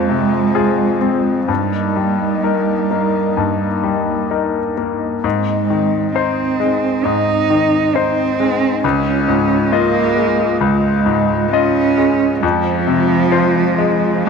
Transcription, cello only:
0.00 1.49 G#3 medium
1.49 4.26 G3 medium
5.24 6.10 G#3 medium
6.15 7.06 C4 medium
7.05 7.96 D#4 medium
7.95 8.84 C4 medium
8.85 9.73 C#4 medium
9.72 10.62 A#3 medium
10.60 11.53 G#3 medium
11.52 12.44 C#4 medium
12.43 14.28 F3 medium

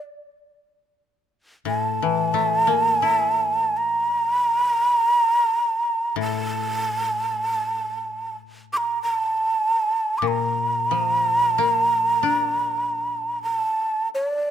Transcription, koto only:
0.00 0.23 F4 soft
0.00 0.92 A#4 soft
1.65 5.03 A2 soft
2.02 4.71 E3 soft
2.34 5.03 A3 soft
2.67 5.36 A#3 soft
3.02 5.70 E4 soft
6.16 9.54 A2 soft
10.22 13.60 A#2 soft
10.91 13.56 F3 soft
11.58 14.23 A#3 soft
12.23 14.51 D4 soft

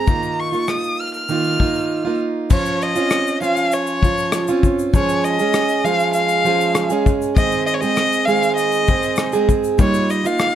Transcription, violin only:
0.00 0.41 A#5 medium
0.39 0.71 C#6 medium
0.69 1.02 D#6 medium
1.01 1.14 F6 medium
1.15 2.17 F6 medium
2.53 2.84 C#5 medium
2.83 3.42 D#5 medium
3.43 3.75 F5 medium
3.74 4.64 C#5 medium
4.95 5.26 C#5 medium
5.24 5.86 D#5 medium
5.85 6.13 F5 loud
6.14 7.01 F5 loud
7.36 7.65 D#5 medium
7.66 7.76 D#5 medium
7.74 7.82 C#5 medium
7.80 8.27 D#5 loud
8.26 8.56 F5 loud
8.56 9.44 D#5 medium
9.81 10.12 C#5 medium
10.11 10.28 D#5 medium
10.26 10.55 F5 medium

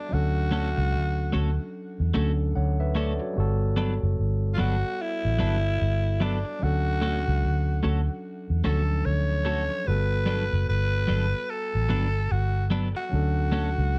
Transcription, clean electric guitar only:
0.51 0.68 A3 medium
0.51 0.68 C#4 medium
0.51 0.69 F#4 medium
0.51 0.69 A4 medium
1.32 1.49 A3 medium
1.32 1.50 C#4 medium
1.32 1.50 F#4 medium
1.32 1.50 A4 medium
2.14 2.31 A3 medium
2.14 2.31 C#4 medium
2.14 2.31 F#4 medium
2.14 2.31 A4 medium
2.95 3.12 A3 medium
2.95 3.12 C#4 medium
2.95 3.12 F#4 medium
2.95 3.13 A4 medium
3.20 muted clean electric guitar stroke soft
3.76 3.93 F#3 medium
3.76 3.93 B3 medium
3.76 3.94 D4 medium
3.76 3.94 A4 medium
4.58 4.75 F#3 medium
4.58 4.75 B3 medium
4.58 4.75 D4 medium
4.58 4.75 A4 medium
5.38 5.56 F#3 medium
5.38 5.56 B3 medium
5.38 5.56 D4 medium
5.38 5.56 A4 medium
6.20 6.37 F#3 medium
6.20 6.37 B3 medium
6.20 6.38 D4 medium
6.20 6.38 A4 medium
6.45 muted clean electric guitar stroke soft
7.01 7.18 A3 medium
7.01 7.19 C#4 medium
7.01 7.19 F#4 medium
7.01 7.19 A4 medium
7.83 8.00 A3 medium
7.83 8.00 C#4 medium
7.83 8.00 F#4 medium
7.83 8.00 A4 medium
8.64 8.81 A3 medium
8.64 8.81 C#4 medium
8.64 8.81 F#4 medium
8.64 8.82 A4 medium
9.45 9.62 A3 medium
9.45 9.62 C#4 medium
9.45 9.63 F#4 medium
9.45 9.63 A4 medium
9.70 muted clean electric guitar stroke soft
10.26 10.43 F#3 medium
10.26 10.43 B3 medium
10.26 10.44 D4 medium
10.26 10.44 A4 medium
11.07 11.25 F#3 medium
11.07 11.25 B3 medium
11.07 11.25 D4 medium
11.07 11.25 A4 medium
11.89 12.06 F#3 medium
11.89 12.06 B3 medium
11.89 12.07 D4 loud
11.89 12.07 A4 loud
12.70 12.87 F#3 medium
12.70 12.88 B3 medium
12.70 12.88 D4 medium
12.70 12.88 A4 medium
12.95 muted clean electric guitar stroke medium
13.52 13.69 A3 medium
13.52 13.69 C#4 medium
13.52 13.69 F#4 medium
13.52 13.70 A4 medium

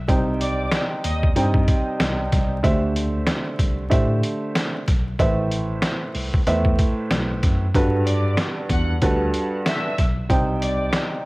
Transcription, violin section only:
0.41 0.70 D5 medium
0.41 0.70 D6 medium
1.04 1.21 D#5 medium
1.04 1.21 D#6 medium
8.07 8.35 D5 medium
8.07 8.36 D6 medium
8.71 8.87 F#5 medium
8.71 8.88 F#6 medium
9.66 9.95 E5 medium
9.66 9.95 E6 medium
10.63 10.91 D5 medium
10.63 10.91 D6 medium

